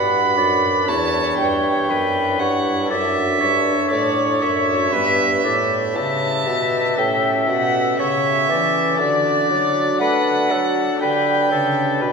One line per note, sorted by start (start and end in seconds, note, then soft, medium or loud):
0.00 0.34 G2 soft
0.00 0.36 G2 medium
0.00 0.82 D4 soft
0.00 0.83 F#4 soft
0.00 0.84 B4 soft
0.00 0.37 F#5 medium
0.00 0.90 B5 medium
0.37 0.89 F#2 medium
0.37 0.84 F#2 soft
0.37 0.87 D5 medium
0.84 1.40 E2 medium
0.84 2.84 D4 soft
0.84 2.85 E4 soft
0.84 2.86 B4 soft
0.84 1.91 C#5 medium
0.88 1.35 E2 soft
0.88 1.37 A5 medium
1.38 1.89 G2 medium
1.38 1.86 G2 soft
1.38 2.41 G5 medium
1.89 2.36 F#2 soft
1.89 2.39 F#2 medium
1.89 2.41 B4 medium
2.39 2.90 G2 medium
2.39 2.87 G2 soft
2.39 2.90 C#5 medium
2.39 2.90 F#5 medium
2.86 4.87 D4 soft
2.86 4.87 A4 soft
2.90 3.40 F#2 medium
2.90 3.37 F#2 soft
2.90 3.42 D5 medium
2.90 3.90 E5 medium
3.41 3.73 G2 medium
3.41 3.71 G2 soft
3.41 4.94 C#5 medium
3.91 4.38 A2 medium
3.91 4.43 D5 medium
4.42 4.92 F#2 medium
4.42 4.89 F#2 medium
4.42 5.97 E5 medium
4.90 5.43 G2 medium
4.90 5.42 B3 soft
4.90 6.93 G4 soft
4.90 5.29 B4 medium
4.90 6.94 B4 soft
4.95 5.42 G2 medium
5.44 5.97 A2 medium
5.44 5.93 A2 soft
5.44 5.78 D5 medium
5.96 6.46 C#3 medium
5.96 6.44 C#3 medium
5.96 8.01 E5 medium
5.96 7.00 A5 medium
6.47 6.97 B2 medium
6.47 6.95 B2 soft
6.95 7.50 A2 medium
6.95 8.95 C#4 soft
6.95 8.95 G4 soft
6.95 8.96 A4 soft
6.95 7.51 G5 medium
7.00 7.46 A2 soft
7.48 7.98 B2 medium
7.48 7.96 B2 medium
7.48 7.99 F#5 medium
7.99 8.51 C#3 medium
7.99 8.46 C#3 medium
7.99 8.49 C#5 medium
7.99 8.98 E5 medium
8.49 9.01 E3 medium
8.49 8.96 E3 medium
8.49 9.98 D5 medium
8.96 9.50 D3 medium
8.96 10.95 D4 soft
8.96 10.96 F#4 soft
8.96 10.97 A4 soft
8.96 9.98 D5 medium
9.01 9.47 D3 medium
9.50 10.02 F#3 medium
9.50 9.97 F#3 medium
10.00 10.52 A3 medium
10.00 10.47 A3 medium
10.00 10.53 B4 medium
10.00 10.99 F#5 medium
10.51 10.83 F#3 medium
10.51 10.81 F#3 medium
10.51 11.01 A4 medium
10.98 11.52 D3 medium
10.98 12.12 D4 soft
10.98 12.12 G4 soft
10.98 12.12 B4 soft
10.98 11.51 B4 medium
10.98 12.12 G5 medium
11.02 11.48 D3 medium
11.51 12.01 C#3 medium
11.51 11.98 C#3 medium
11.51 12.03 A4 medium
12.01 12.12 B2 medium
12.01 12.12 B4 medium